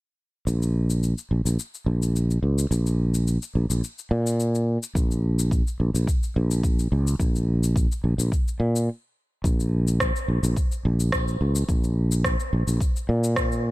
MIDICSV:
0, 0, Header, 1, 3, 480
1, 0, Start_track
1, 0, Key_signature, -5, "minor"
1, 0, Tempo, 560748
1, 402, Time_signature, 4, 2, 24, 8
1, 11737, End_track
2, 0, Start_track
2, 0, Title_t, "Fretless electric bass"
2, 0, Program_c, 0, 35
2, 401, Note_on_c, 0, 34, 84
2, 965, Note_off_c, 0, 34, 0
2, 1120, Note_on_c, 0, 34, 71
2, 1221, Note_off_c, 0, 34, 0
2, 1245, Note_on_c, 0, 34, 68
2, 1336, Note_off_c, 0, 34, 0
2, 1595, Note_on_c, 0, 34, 85
2, 2040, Note_off_c, 0, 34, 0
2, 2076, Note_on_c, 0, 37, 80
2, 2271, Note_off_c, 0, 37, 0
2, 2318, Note_on_c, 0, 34, 79
2, 2883, Note_off_c, 0, 34, 0
2, 3041, Note_on_c, 0, 34, 71
2, 3141, Note_off_c, 0, 34, 0
2, 3167, Note_on_c, 0, 34, 67
2, 3257, Note_off_c, 0, 34, 0
2, 3518, Note_on_c, 0, 46, 93
2, 4083, Note_off_c, 0, 46, 0
2, 4239, Note_on_c, 0, 34, 85
2, 4804, Note_off_c, 0, 34, 0
2, 4963, Note_on_c, 0, 34, 75
2, 5062, Note_off_c, 0, 34, 0
2, 5088, Note_on_c, 0, 34, 69
2, 5178, Note_off_c, 0, 34, 0
2, 5446, Note_on_c, 0, 34, 95
2, 5885, Note_off_c, 0, 34, 0
2, 5922, Note_on_c, 0, 37, 82
2, 6113, Note_off_c, 0, 37, 0
2, 6159, Note_on_c, 0, 34, 91
2, 6724, Note_off_c, 0, 34, 0
2, 6880, Note_on_c, 0, 34, 72
2, 6980, Note_off_c, 0, 34, 0
2, 7004, Note_on_c, 0, 34, 75
2, 7096, Note_off_c, 0, 34, 0
2, 7359, Note_on_c, 0, 46, 93
2, 7601, Note_off_c, 0, 46, 0
2, 8081, Note_on_c, 0, 34, 86
2, 8645, Note_off_c, 0, 34, 0
2, 8802, Note_on_c, 0, 34, 70
2, 8901, Note_off_c, 0, 34, 0
2, 8929, Note_on_c, 0, 34, 74
2, 9018, Note_off_c, 0, 34, 0
2, 9288, Note_on_c, 0, 34, 94
2, 9726, Note_off_c, 0, 34, 0
2, 9765, Note_on_c, 0, 37, 85
2, 9955, Note_off_c, 0, 37, 0
2, 10003, Note_on_c, 0, 34, 89
2, 10566, Note_off_c, 0, 34, 0
2, 10724, Note_on_c, 0, 34, 76
2, 10822, Note_off_c, 0, 34, 0
2, 10849, Note_on_c, 0, 34, 75
2, 10938, Note_off_c, 0, 34, 0
2, 11204, Note_on_c, 0, 46, 96
2, 11737, Note_off_c, 0, 46, 0
2, 11737, End_track
3, 0, Start_track
3, 0, Title_t, "Drums"
3, 407, Note_on_c, 9, 69, 48
3, 493, Note_off_c, 9, 69, 0
3, 535, Note_on_c, 9, 69, 29
3, 621, Note_off_c, 9, 69, 0
3, 771, Note_on_c, 9, 69, 58
3, 857, Note_off_c, 9, 69, 0
3, 884, Note_on_c, 9, 69, 44
3, 970, Note_off_c, 9, 69, 0
3, 1009, Note_on_c, 9, 69, 30
3, 1095, Note_off_c, 9, 69, 0
3, 1252, Note_on_c, 9, 69, 64
3, 1337, Note_off_c, 9, 69, 0
3, 1364, Note_on_c, 9, 69, 52
3, 1450, Note_off_c, 9, 69, 0
3, 1492, Note_on_c, 9, 69, 28
3, 1578, Note_off_c, 9, 69, 0
3, 1733, Note_on_c, 9, 69, 55
3, 1818, Note_off_c, 9, 69, 0
3, 1850, Note_on_c, 9, 69, 46
3, 1935, Note_off_c, 9, 69, 0
3, 1974, Note_on_c, 9, 69, 29
3, 2060, Note_off_c, 9, 69, 0
3, 2212, Note_on_c, 9, 69, 58
3, 2298, Note_off_c, 9, 69, 0
3, 2327, Note_on_c, 9, 69, 50
3, 2413, Note_off_c, 9, 69, 0
3, 2452, Note_on_c, 9, 69, 30
3, 2538, Note_off_c, 9, 69, 0
3, 2692, Note_on_c, 9, 69, 61
3, 2777, Note_off_c, 9, 69, 0
3, 2804, Note_on_c, 9, 69, 48
3, 2889, Note_off_c, 9, 69, 0
3, 2930, Note_on_c, 9, 69, 30
3, 3016, Note_off_c, 9, 69, 0
3, 3172, Note_on_c, 9, 69, 65
3, 3257, Note_off_c, 9, 69, 0
3, 3288, Note_on_c, 9, 69, 52
3, 3373, Note_off_c, 9, 69, 0
3, 3411, Note_on_c, 9, 69, 30
3, 3497, Note_off_c, 9, 69, 0
3, 3653, Note_on_c, 9, 69, 64
3, 3738, Note_off_c, 9, 69, 0
3, 3766, Note_on_c, 9, 69, 52
3, 3852, Note_off_c, 9, 69, 0
3, 3894, Note_on_c, 9, 69, 30
3, 3980, Note_off_c, 9, 69, 0
3, 4134, Note_on_c, 9, 69, 63
3, 4220, Note_off_c, 9, 69, 0
3, 4239, Note_on_c, 9, 36, 101
3, 4249, Note_on_c, 9, 69, 53
3, 4324, Note_off_c, 9, 36, 0
3, 4335, Note_off_c, 9, 69, 0
3, 4376, Note_on_c, 9, 69, 32
3, 4461, Note_off_c, 9, 69, 0
3, 4614, Note_on_c, 9, 69, 64
3, 4700, Note_off_c, 9, 69, 0
3, 4719, Note_on_c, 9, 36, 97
3, 4727, Note_on_c, 9, 69, 48
3, 4804, Note_off_c, 9, 36, 0
3, 4812, Note_off_c, 9, 69, 0
3, 4855, Note_on_c, 9, 69, 31
3, 4941, Note_off_c, 9, 69, 0
3, 5096, Note_on_c, 9, 69, 62
3, 5181, Note_off_c, 9, 69, 0
3, 5199, Note_on_c, 9, 36, 103
3, 5208, Note_on_c, 9, 69, 54
3, 5285, Note_off_c, 9, 36, 0
3, 5294, Note_off_c, 9, 69, 0
3, 5333, Note_on_c, 9, 69, 33
3, 5418, Note_off_c, 9, 69, 0
3, 5573, Note_on_c, 9, 69, 58
3, 5659, Note_off_c, 9, 69, 0
3, 5679, Note_on_c, 9, 36, 96
3, 5685, Note_on_c, 9, 69, 49
3, 5765, Note_off_c, 9, 36, 0
3, 5771, Note_off_c, 9, 69, 0
3, 5813, Note_on_c, 9, 69, 32
3, 5898, Note_off_c, 9, 69, 0
3, 6055, Note_on_c, 9, 69, 64
3, 6141, Note_off_c, 9, 69, 0
3, 6159, Note_on_c, 9, 36, 93
3, 6165, Note_on_c, 9, 69, 52
3, 6245, Note_off_c, 9, 36, 0
3, 6251, Note_off_c, 9, 69, 0
3, 6296, Note_on_c, 9, 69, 31
3, 6382, Note_off_c, 9, 69, 0
3, 6535, Note_on_c, 9, 69, 67
3, 6621, Note_off_c, 9, 69, 0
3, 6640, Note_on_c, 9, 36, 100
3, 6650, Note_on_c, 9, 69, 50
3, 6726, Note_off_c, 9, 36, 0
3, 6735, Note_off_c, 9, 69, 0
3, 6778, Note_on_c, 9, 69, 31
3, 6864, Note_off_c, 9, 69, 0
3, 7015, Note_on_c, 9, 69, 65
3, 7101, Note_off_c, 9, 69, 0
3, 7120, Note_on_c, 9, 36, 99
3, 7130, Note_on_c, 9, 69, 55
3, 7206, Note_off_c, 9, 36, 0
3, 7216, Note_off_c, 9, 69, 0
3, 7257, Note_on_c, 9, 69, 32
3, 7343, Note_off_c, 9, 69, 0
3, 7498, Note_on_c, 9, 69, 62
3, 7583, Note_off_c, 9, 69, 0
3, 8081, Note_on_c, 9, 36, 94
3, 8090, Note_on_c, 9, 69, 49
3, 8167, Note_off_c, 9, 36, 0
3, 8176, Note_off_c, 9, 69, 0
3, 8217, Note_on_c, 9, 69, 33
3, 8302, Note_off_c, 9, 69, 0
3, 8454, Note_on_c, 9, 69, 62
3, 8540, Note_off_c, 9, 69, 0
3, 8562, Note_on_c, 9, 36, 91
3, 8562, Note_on_c, 9, 37, 90
3, 8569, Note_on_c, 9, 69, 50
3, 8648, Note_off_c, 9, 36, 0
3, 8648, Note_off_c, 9, 37, 0
3, 8655, Note_off_c, 9, 69, 0
3, 8697, Note_on_c, 9, 69, 31
3, 8783, Note_off_c, 9, 69, 0
3, 8935, Note_on_c, 9, 69, 67
3, 9021, Note_off_c, 9, 69, 0
3, 9043, Note_on_c, 9, 36, 95
3, 9048, Note_on_c, 9, 69, 51
3, 9129, Note_off_c, 9, 36, 0
3, 9133, Note_off_c, 9, 69, 0
3, 9174, Note_on_c, 9, 69, 29
3, 9259, Note_off_c, 9, 69, 0
3, 9415, Note_on_c, 9, 69, 60
3, 9501, Note_off_c, 9, 69, 0
3, 9522, Note_on_c, 9, 37, 96
3, 9524, Note_on_c, 9, 36, 92
3, 9529, Note_on_c, 9, 69, 51
3, 9607, Note_off_c, 9, 37, 0
3, 9609, Note_off_c, 9, 36, 0
3, 9614, Note_off_c, 9, 69, 0
3, 9655, Note_on_c, 9, 69, 31
3, 9740, Note_off_c, 9, 69, 0
3, 9891, Note_on_c, 9, 69, 65
3, 9977, Note_off_c, 9, 69, 0
3, 10003, Note_on_c, 9, 36, 101
3, 10006, Note_on_c, 9, 69, 54
3, 10088, Note_off_c, 9, 36, 0
3, 10092, Note_off_c, 9, 69, 0
3, 10133, Note_on_c, 9, 69, 32
3, 10218, Note_off_c, 9, 69, 0
3, 10372, Note_on_c, 9, 69, 68
3, 10458, Note_off_c, 9, 69, 0
3, 10481, Note_on_c, 9, 36, 92
3, 10481, Note_on_c, 9, 37, 90
3, 10488, Note_on_c, 9, 69, 53
3, 10567, Note_off_c, 9, 36, 0
3, 10567, Note_off_c, 9, 37, 0
3, 10574, Note_off_c, 9, 69, 0
3, 10613, Note_on_c, 9, 69, 32
3, 10699, Note_off_c, 9, 69, 0
3, 10853, Note_on_c, 9, 69, 67
3, 10938, Note_off_c, 9, 69, 0
3, 10961, Note_on_c, 9, 36, 100
3, 10968, Note_on_c, 9, 69, 55
3, 11046, Note_off_c, 9, 36, 0
3, 11054, Note_off_c, 9, 69, 0
3, 11096, Note_on_c, 9, 69, 33
3, 11182, Note_off_c, 9, 69, 0
3, 11333, Note_on_c, 9, 69, 65
3, 11419, Note_off_c, 9, 69, 0
3, 11439, Note_on_c, 9, 37, 102
3, 11441, Note_on_c, 9, 36, 96
3, 11446, Note_on_c, 9, 69, 51
3, 11525, Note_off_c, 9, 37, 0
3, 11526, Note_off_c, 9, 36, 0
3, 11532, Note_off_c, 9, 69, 0
3, 11572, Note_on_c, 9, 69, 35
3, 11658, Note_off_c, 9, 69, 0
3, 11737, End_track
0, 0, End_of_file